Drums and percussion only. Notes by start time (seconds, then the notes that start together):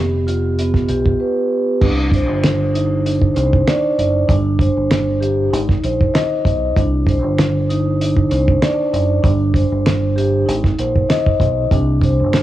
0.28 closed hi-hat
0.59 closed hi-hat
0.74 kick, snare
0.89 closed hi-hat
1.06 kick
1.82 kick, crash
2.12 kick, closed hi-hat
2.44 finger snap, snare, closed hi-hat
2.75 closed hi-hat
3.06 closed hi-hat
3.21 kick
3.36 closed hi-hat
3.53 kick
3.67 finger snap, snare, closed hi-hat
3.99 closed hi-hat
4.29 kick, closed hi-hat
4.59 kick, closed hi-hat
4.91 finger snap, snare, closed hi-hat
5.23 closed hi-hat
5.54 closed hi-hat
5.69 kick, snare
5.84 closed hi-hat
6.01 kick
6.15 finger snap, snare, closed hi-hat
6.45 kick, closed hi-hat
6.77 kick, closed hi-hat
7.07 kick, closed hi-hat
7.38 finger snap, snare, closed hi-hat
7.70 closed hi-hat
8.01 closed hi-hat
8.16 kick
8.31 closed hi-hat
8.48 kick
8.62 finger snap, snare, closed hi-hat
8.94 closed hi-hat
9.24 kick, closed hi-hat
9.54 kick, closed hi-hat
9.86 finger snap, snare, closed hi-hat
10.18 closed hi-hat
10.48 closed hi-hat
10.64 kick, snare
10.78 closed hi-hat
10.96 kick
11.10 finger snap, snare, closed hi-hat
11.26 kick
11.40 kick, closed hi-hat
11.71 kick, closed hi-hat
12.02 kick, closed hi-hat
12.33 finger snap, snare, closed hi-hat